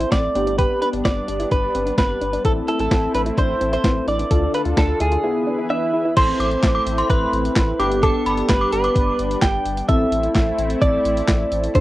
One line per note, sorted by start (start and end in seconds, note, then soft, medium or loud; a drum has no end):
0.00 0.34 A3 medium
0.00 0.32 C4 medium
0.00 0.34 C4 medium
0.00 0.32 E4 medium
0.00 0.34 E4 medium
0.00 0.08 E4 medium
0.00 0.32 A4 medium
0.00 0.12 C5 loud
0.00 closed hi-hat medium
0.12 0.28 A1 loud
0.12 0.27 C4 medium
0.12 0.58 D5 loud
0.12 kick loud
0.12 snare loud
0.12 closed hi-hat medium
0.35 0.68 G1 loud
0.35 2.43 G3 medium
0.35 2.43 B3 medium
0.35 2.18 B3 medium
0.35 0.43 D4 medium
0.35 2.43 D4 medium
0.35 2.18 D4 medium
0.35 2.18 G4 medium
0.35 closed hi-hat medium
0.47 0.55 D4 medium
0.47 closed hi-hat medium
0.58 0.74 G4 medium
0.58 0.81 B4 medium
0.58 kick loud
0.58 closed hi-hat medium
0.82 0.89 D4 medium
0.82 0.88 B4 medium
0.82 closed hi-hat medium
0.93 1.02 G1 loud
0.93 1.01 D4 medium
0.93 closed hi-hat soft
1.05 1.21 G1 medium
1.05 1.20 C4 medium
1.05 1.48 D5 medium
1.05 kick loud
1.05 snare loud
1.05 closed hi-hat medium
1.28 1.45 G1 loud
1.28 1.36 D4 medium
1.28 closed hi-hat medium
1.40 1.48 E4 medium
1.40 closed hi-hat medium
1.51 1.68 G1 loud
1.51 1.67 D4 medium
1.51 1.95 B4 medium
1.51 kick loud
1.51 closed hi-hat medium
1.75 1.91 G1 loud
1.75 1.83 C4 medium
1.75 closed hi-hat medium
1.86 1.94 D4 medium
1.86 closed hi-hat medium
1.98 2.14 G1 loud
1.98 2.14 C4 medium
1.98 2.45 B4 medium
1.98 kick loud
1.98 snare loud
1.98 closed hi-hat medium
2.21 2.38 G1 loud
2.21 2.29 D4 medium
2.21 closed hi-hat medium
2.33 2.41 D4 medium
2.33 closed hi-hat medium
2.45 2.61 A1 loud
2.45 4.29 A3 medium
2.45 3.81 C4 medium
2.45 4.29 C4 medium
2.45 3.81 E4 medium
2.45 4.29 E4 medium
2.45 3.81 A4 medium
2.45 2.60 A4 medium
2.45 2.52 A4 medium
2.45 kick loud
2.45 closed hi-hat medium
2.68 2.76 E4 medium
2.68 2.79 A4 medium
2.68 closed hi-hat medium
2.79 2.88 A1 loud
2.79 2.87 E4 medium
2.79 3.14 A4 medium
2.79 closed hi-hat soft
2.91 3.07 A1 loud
2.91 3.07 C4 medium
2.91 kick loud
2.91 snare loud
2.91 closed hi-hat medium
3.14 3.31 A1 loud
3.14 3.22 D4 medium
3.14 3.21 B4 medium
3.14 closed hi-hat medium
3.26 3.34 E4 medium
3.26 closed hi-hat medium
3.38 3.54 A1 loud
3.38 3.53 D4 medium
3.38 3.72 C5 medium
3.38 kick loud
3.38 closed hi-hat medium
3.61 3.77 A1 loud
3.61 3.69 C4 medium
3.61 closed hi-hat medium
3.73 3.80 E4 medium
3.73 4.08 C5 medium
3.73 closed hi-hat medium
3.84 4.00 A1 loud
3.84 4.00 C4 medium
3.84 4.31 C4 medium
3.84 4.31 E4 soft
3.84 4.31 B4 medium
3.84 kick loud
3.84 snare loud
3.84 closed hi-hat medium
4.07 4.24 A1 loud
4.07 4.15 D4 medium
4.07 4.54 D5 loud
4.07 closed hi-hat medium
4.19 4.27 D4 medium
4.19 closed hi-hat medium
4.31 4.47 D2 loud
4.31 5.23 D3 medium
4.31 5.23 D4 medium
4.31 5.22 D4 medium
4.31 5.23 F4 medium
4.31 5.22 F4 medium
4.31 5.23 A4 medium
4.31 4.46 A4 medium
4.31 5.22 A4 medium
4.31 kick loud
4.31 closed hi-hat medium
4.54 4.62 F4 medium
4.54 4.61 B4 medium
4.54 closed hi-hat medium
4.65 4.74 D2 loud
4.65 4.73 F4 medium
4.65 closed hi-hat soft
4.77 4.93 D2 loud
4.77 4.93 D4 medium
4.77 5.01 A4 medium
4.77 kick loud
4.77 snare loud
4.77 closed hi-hat medium
5.00 5.17 D2 loud
5.00 5.08 E4 medium
5.00 5.67 G#4 medium
5.00 closed hi-hat medium
5.12 5.20 F4 medium
5.12 closed hi-hat medium
5.24 6.16 E3 medium
5.24 6.15 B3 medium
5.24 5.39 E4 medium
5.24 6.15 E4 medium
5.24 6.15 G#4 medium
5.24 6.16 G#4 medium
5.24 6.16 B4 medium
5.47 5.55 D4 medium
5.59 5.66 E4 medium
5.70 5.86 D4 medium
5.70 6.16 E5 loud
5.94 6.01 E4 medium
6.05 6.13 E4 medium
6.17 6.33 A1 loud
6.17 7.78 A3 medium
6.17 7.76 C4 medium
6.17 7.78 C4 medium
6.17 7.78 E4 medium
6.17 7.76 E4 medium
6.17 7.76 A4 medium
6.17 7.10 C5 loud
6.17 6.34 C6 loud
6.17 kick loud
6.17 closed hi-hat medium
6.17 crash loud
6.40 6.56 A1 loud
6.40 6.57 D6 medium
6.40 closed hi-hat medium
6.51 closed hi-hat soft
6.63 6.79 A1 medium
6.63 kick loud
6.63 snare loud
6.63 clap medium
6.63 closed hi-hat medium
6.75 6.83 D6 medium
6.86 7.03 A1 loud
6.86 closed hi-hat medium
6.98 7.31 C6 medium
6.98 closed hi-hat medium
7.10 7.26 A1 loud
7.10 8.06 B4 medium
7.10 kick loud
7.10 closed hi-hat medium
7.33 7.49 A1 loud
7.33 closed hi-hat medium
7.45 closed hi-hat medium
7.56 7.72 A1 loud
7.56 kick loud
7.56 snare loud
7.56 clap medium
7.56 closed hi-hat medium
7.79 8.12 G1 loud
7.79 9.87 G3 medium
7.79 9.62 B3 medium
7.79 9.87 B3 medium
7.79 9.62 D4 medium
7.79 9.87 D4 medium
7.79 9.62 G4 medium
7.79 7.88 D6 medium
7.79 closed hi-hat medium
7.92 closed hi-hat medium
8.03 8.51 A4 loud
8.03 8.20 D6 loud
8.03 kick loud
8.03 closed hi-hat medium
8.26 8.42 G1 loud
8.26 8.43 B5 medium
8.26 closed hi-hat medium
8.37 closed hi-hat soft
8.49 8.66 G1 loud
8.49 8.71 B4 medium
8.49 kick loud
8.49 snare loud
8.49 clap medium
8.49 closed hi-hat medium
8.61 8.70 D6 medium
8.73 8.89 G1 loud
8.73 9.38 B4 loud
8.73 closed hi-hat medium
8.84 9.17 D6 medium
8.84 closed hi-hat medium
8.96 9.12 G1 loud
8.96 kick loud
8.96 closed hi-hat medium
9.19 9.35 G1 loud
9.19 closed hi-hat medium
9.31 closed hi-hat medium
9.42 9.58 G1 loud
9.42 9.88 G5 loud
9.42 kick loud
9.42 snare loud
9.42 clap medium
9.42 closed hi-hat medium
9.66 9.82 G1 loud
9.66 closed hi-hat medium
9.77 closed hi-hat medium
9.89 10.05 A1 loud
9.89 11.73 A3 medium
9.89 11.71 C4 medium
9.89 11.73 C4 medium
9.89 11.71 E4 medium
9.89 11.73 E4 medium
9.89 11.71 A4 medium
9.89 10.81 E5 loud
9.89 kick loud
9.89 closed hi-hat medium
10.12 10.28 A1 medium
10.12 closed hi-hat medium
10.23 closed hi-hat soft
10.35 10.52 A1 loud
10.35 kick loud
10.35 snare loud
10.35 clap medium
10.35 closed hi-hat medium
10.59 10.75 A1 loud
10.59 closed hi-hat medium
10.70 closed hi-hat medium
10.82 10.98 A1 loud
10.82 11.78 D5 loud
10.82 kick loud
10.82 closed hi-hat medium
11.05 11.21 A1 loud
11.05 closed hi-hat medium
11.17 closed hi-hat medium
11.28 11.44 A1 loud
11.28 kick loud
11.28 snare loud
11.28 clap medium
11.28 closed hi-hat medium
11.52 11.68 A1 loud
11.52 closed hi-hat medium
11.64 closed hi-hat medium
11.75 11.80 D2 loud
11.75 11.80 D3 medium
11.75 11.80 D4 medium
11.75 11.80 F4 medium
11.75 11.80 A4 medium
11.75 11.80 C5 loud
11.75 kick loud
11.75 closed hi-hat medium